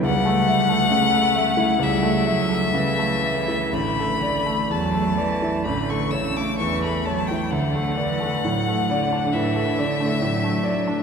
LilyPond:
<<
  \new Staff \with { instrumentName = "Violin" } { \time 4/4 \key a \mixolydian \tempo 4 = 66 fis''2 e''2 | b''4 a''4 b''16 cis'''16 e'''16 d'''16 cis'''16 b''16 a''16 g''16 | fis''2 e''2 | }
  \new Staff \with { instrumentName = "Grand piano" } { \time 4/4 \key a \mixolydian cis,16 a16 e''16 a16 cis16 a16 e''16 e'16 cis,16 a16 e''16 a16 cis16 a16 e''16 e'16 | a,,16 a16 d''16 a16 e,16 a16 d''16 e'16 a,,16 a16 cis''16 a16 e,16 a16 cis''16 e'16 | d,16 a16 d''16 a16 a,16 a16 d''16 d'16 a,16 a16 d''16 a16 a,16 a16 d''16 d'16 | }
  \new Staff \with { instrumentName = "Cello" } { \clef bass \time 4/4 \key a \mixolydian g4 a4 g8 fis8 e4 | d4 fis8 e8 d8 cis8 e8 fis8 | d8 e8 fis8 d8 e8 d8 fis4 | }
>>